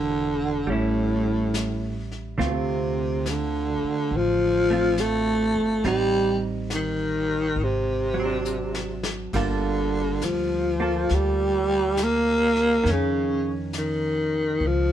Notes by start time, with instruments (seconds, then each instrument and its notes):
Already playing: upright bass E1, baritone saxophone D3, hollow-body jazz guitar E3 A#3 D4 G4
0.67 upright bass A1, baritone saxophone A2, hollow-body jazz guitar G3 C#4, brush sweep
0.72 hollow-body jazz guitar E4
1.54 snare, hi-hat pedal
2.11 snare
2.38 upright bass D2, hollow-body jazz guitar D3 A3 C4 F4, brush sweep, snare
2.45 baritone saxophone C3
3.26 baritone saxophone D3, snare, hi-hat pedal
3.83 muted upright bass stroke
4.11 upright bass A1, brush sweep
4.17 baritone saxophone F3
4.70 hollow-body jazz guitar A3 C4 F4
4.97 baritone saxophone A3, snare, hi-hat pedal
5.55 upright bass G1
5.84 upright bass A1, hollow-body jazz guitar G3 C4 D#4, baritone saxophone G3, brush sweep, snare
6.70 snare, hi-hat pedal
6.74 baritone saxophone D#3
7.56 upright bass G#1, brush sweep
7.64 baritone saxophone C3
8.14 hollow-body jazz guitar F#3
8.20 hollow-body jazz guitar C4
8.25 hollow-body jazz guitar D4
8.45 hi-hat pedal
8.74 snare
9.03 snare
9.33 upright bass G1, baritone saxophone D3, hollow-body jazz guitar G3 A#3 F4 A4, brush sweep, kick, ride
10.22 upright bass D2, baritone saxophone F3, snare, hi-hat pedal
10.80 hollow-body jazz guitar A#3 F4 A4
11.09 upright bass D2, brush sweep, snare
11.14 baritone saxophone G3
11.97 snare, hi-hat pedal
12.03 baritone saxophone A#3
12.56 snare
12.84 upright bass F2, hollow-body jazz guitar D#3, brush sweep, snare
12.89 baritone saxophone C#3, hollow-body jazz guitar C#4
13.73 snare, hi-hat pedal
13.78 baritone saxophone D#3
14.60 upright bass C#2, brush sweep
14.67 baritone saxophone F3